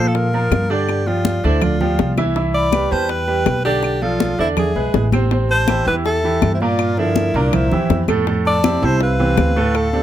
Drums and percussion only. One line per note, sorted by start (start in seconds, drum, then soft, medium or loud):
0.15 high bongo medium
0.15 high conga soft
0.33 high conga soft
0.52 high bongo medium
0.52 low bongo medium
0.52 high conga medium
0.52 claves medium
0.70 high conga soft
0.88 high bongo medium
0.88 high conga soft
0.88 claves medium
1.06 high bongo soft
1.06 high conga soft
1.25 high bongo medium
1.25 high conga medium
1.43 high bongo soft
1.43 high conga soft
1.62 high bongo medium
1.62 high conga soft
1.62 low conga medium
1.62 claves medium
1.81 high conga soft
1.81 low conga medium
1.99 high bongo medium
1.99 low bongo medium
1.99 high conga medium
2.17 high bongo soft
2.17 high conga medium
2.17 claves medium
2.36 high bongo medium
2.36 high conga soft
2.54 high conga soft
2.72 high bongo medium
2.72 high conga medium
2.72 claves medium
2.91 high conga soft
3.09 high bongo medium
3.09 high conga soft
3.28 high conga soft
3.46 high bongo medium
3.46 low bongo medium
3.46 high conga medium
3.46 claves medium
3.65 high conga soft
3.83 high bongo medium
3.83 high conga soft
3.83 claves medium
4.02 high bongo soft
4.02 high conga soft
4.20 high bongo medium
4.20 high conga loud
4.39 high bongo soft
4.39 high conga soft
4.57 high bongo medium
4.57 high conga soft
4.57 low conga medium
4.57 claves medium
4.76 high conga soft
4.94 high bongo medium
4.94 low bongo medium
4.94 high conga medium
5.12 high bongo soft
5.12 high conga medium
5.12 claves medium
5.31 high bongo medium
5.31 high conga soft
5.49 high conga soft
5.68 high bongo medium
5.68 high conga loud
5.68 claves medium
5.87 high conga soft
6.05 high bongo medium
6.05 high conga soft
6.24 high conga soft
6.42 high bongo medium
6.42 low bongo medium
6.42 high conga medium
6.42 claves medium
6.60 high conga soft
6.79 high bongo medium
6.79 high conga soft
6.79 claves medium
6.97 high bongo soft
6.97 high conga soft
7.16 high bongo medium
7.16 high conga medium
7.34 high bongo soft
7.34 high conga soft
7.53 high bongo medium
7.53 high conga soft
7.53 low conga medium
7.53 claves medium
7.71 high conga soft
7.71 low conga medium
7.90 high bongo medium
7.90 low bongo medium
7.90 high conga medium
8.08 high bongo soft
8.08 high conga medium
8.08 claves medium
8.27 high bongo medium
8.27 high conga soft
8.45 high conga soft
8.64 high bongo medium
8.64 high conga medium
8.64 claves medium
8.82 high conga soft
9.01 high bongo medium
9.01 high conga soft
9.19 high conga soft
9.38 high bongo medium
9.38 low bongo medium
9.38 high conga medium
9.38 claves medium
9.57 high conga soft
9.75 high bongo medium
9.75 high conga soft
9.75 claves medium
9.93 high bongo soft
9.93 high conga soft